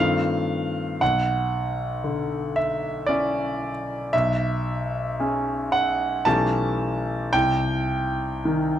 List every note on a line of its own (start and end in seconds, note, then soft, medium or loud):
0.00 0.99 G2 soft
0.00 0.98 D#3 soft
0.00 0.99 A3 soft
0.00 0.99 C4 soft
0.00 0.99 F4 soft
0.00 1.02 F5 medium
1.01 4.09 B1 soft
1.01 2.56 F#5 medium
2.04 3.71 D3 soft
2.56 3.08 E5 medium
3.06 4.09 C#4 soft
3.06 4.09 E4 soft
3.06 4.12 D5 medium
4.13 6.22 B1 medium
4.13 5.73 E5 medium
5.20 6.22 C#4 soft
5.20 6.22 G#4 soft
5.72 6.26 F#5 medium
6.25 7.30 B1 soft
6.25 7.30 E3 soft
6.25 7.30 A3 soft
6.25 7.30 C#4 soft
6.25 7.30 G4 soft
6.25 7.33 A5 medium
7.33 8.79 C2 medium
7.33 8.79 G5 medium
8.45 8.79 D#3 soft